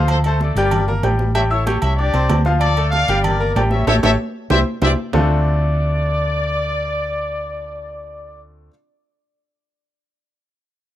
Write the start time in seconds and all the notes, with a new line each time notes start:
Already playing: D2 F3 F4 F5
0.08 A4 C5, high conga, low agogo
0.24 A3 A4 C5 A5, high conga, low agogo
0.40 A4 D5, high conga, low timbale
0.55 G1 G3 G4 A#4 D5 G5, high conga, low agogo
0.71 high conga, low conga, low agogo
0.88 A#3 A#4 A#5, high conga, low conga
1.03 A1 G3 G4 G5, high conga, low timbale, low agogo
1.19 high conga
1.35 G3 G4 C#5 E5 G5, high conga, low agogo
1.50 E4 A4 C#5 E5 E6, high conga
1.66 G4 A4 C#5 G5 G6, high conga, low timbale, low agogo
1.81 C2 C#5 E5, high conga, low agogo
1.97 D4 G4 D5 D6, high conga
2.13 C2 C4 C5 C6, high conga, low agogo
2.29 D2, high conga, low timbale, low agogo
2.45 F3 F4 F5, high conga
2.59 A4 D5, high conga, low agogo
2.77 A3 A4 A5, high conga, low agogo
2.91 D5 F5, high conga, low timbale
3.08 G1 G3 G4 G5, high conga, low agogo
3.23 A#4 D5, high conga, low conga, low agogo
3.40 A#3 A#4 A#5, high conga
3.54 A1 G3 G4 A#4 D5 G5, high conga, low timbale, low agogo
3.70 C#5 E5, high conga
3.87 A1 G4 A4 C#5 E5, high conga, high timbale
4.03 A1 G4 A4 C#5 E5, high conga, high timbale
4.50 C2 E4 G4 C5 D5 E5, high conga, high timbale
4.82 C2 E4 G4 C5 D5 E5, high conga, high timbale
5.13 D2 D3 A3 C4 D4 F4 A4 D5, low conga, low timbale